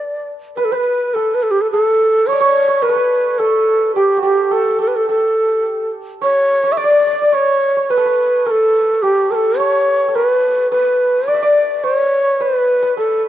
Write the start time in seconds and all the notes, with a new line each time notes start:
Already playing: A4 B4 D5 E5
0.56 B4
0.65 A4
0.72 B4 C5
1.14 A4
1.35 B4
1.43 A4
1.51 G4
1.61 A4
1.72 A4
2.27 C#5
2.32 D5
2.40 C#5
2.68 C#5
2.82 B4
2.89 A4
2.96 B4
3.39 A4
3.95 G4
4.17 F#4
4.23 G4
4.51 A4
4.79 A4
4.88 B4
4.96 A4
5.09 A4
6.22 C#5
6.64 C#5
6.72 E5
6.77 D5
6.84 D5
6.92 D5
7.00 D5
7.07 D5
7.13 D5
7.22 D5
7.32 C#5
7.77 C#5
7.90 B4
7.97 A4
8.06 B4
8.46 A4 A#4
8.51 A4
9.02 G4
9.31 A4 A#4
9.35 A4
9.58 C#5
10.08 A4
10.15 A#4 B4
10.26 B4
10.71 B4
11.28 D5
11.34 E5
11.42 D5
11.84 C5 C#5
11.96 C#5
12.40 B4
12.83 B4
12.97 A4